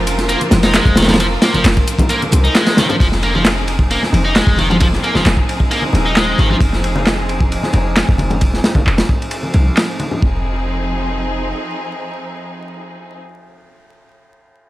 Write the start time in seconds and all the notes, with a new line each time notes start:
Already playing: F1 F3 C4 F4 A#4
0.07 closed hi-hat, ride
0.18 snare, closed hi-hat
0.29 A#3, closed hi-hat, ride
0.41 closed hi-hat, high conga
0.51 F1, snare, closed hi-hat, ride, low conga
0.63 D#4, snare, closed hi-hat, ride
0.74 G#3, snare, clap, closed hi-hat, ride
0.85 F1, kick, closed hi-hat
0.96 D#3, snare, closed hi-hat, ride, high conga
1.02 snare, ride
1.08 F3, snare, closed hi-hat, ride, low conga
1.14 snare, ride
1.20 F3, closed hi-hat, ride
1.42 A#3, snare, closed hi-hat, ride
1.54 F1 F3, closed hi-hat, high conga
1.64 F1, snare, clap, closed hi-hat, ride
1.77 kick, closed hi-hat
1.87 closed hi-hat, ride
1.99 kick, closed hi-hat, low conga
2.09 A#3, closed hi-hat, ride
2.22 closed hi-hat, high conga
2.32 C2, closed hi-hat, ride, low conga
2.44 D#4, closed hi-hat
2.55 G#3, snare, clap, closed hi-hat, ride
2.66 snare, closed hi-hat, ride
2.77 D#3, snare, closed hi-hat, ride, high conga
2.89 F3, closed hi-hat, low conga
3.00 F1 F3 C4 D#4 G#4, kick, ride
3.12 snare
3.23 A#3, ride
3.34 F3, high conga
3.45 snare, clap, ride
3.68 ride
3.79 kick
3.91 A#3, ride
4.03 snare, high conga
4.13 F1, ride, low conga
4.25 D#4
4.36 G#3, snare, clap, ride
4.47 F1, kick
4.58 D#3, ride, high conga
4.70 F3, ride, low conga
4.80 F3, kick, ride
4.93 snare
5.03 A#3, ride
5.15 F1 F3, snare, high conga
5.26 F1, snare, clap, ride
5.37 kick
5.49 ride
5.60 kick
5.71 A#3, ride
5.82 high conga
5.93 D#1, ride, low conga
6.06 D#4
6.16 G#3, snare, clap, ride
6.38 G#1 D#3, ride, high conga
6.50 F3, low conga
6.60 F1, kick, ride
6.73 snare
6.84 ride
6.96 high conga
7.06 snare, clap, ride
7.29 ride
7.41 kick
7.52 ride
7.63 snare, high conga
7.73 F1, ride, low conga
7.96 snare, clap, ride
8.09 F1, kick
8.18 ride, high conga
8.30 ride, low conga
8.41 kick, ride
8.54 snare
8.64 snare, ride
8.75 F1, kick, high conga
8.87 F1, clap, ride
8.98 snare, ride
9.09 kick
9.22 ride
9.31 ride
9.43 high conga
9.54 C2, ride, low conga
9.77 snare, clap, ride
9.99 ride, high conga
10.11 low conga
10.22 F1 F3 C4 D#4 G#4, kick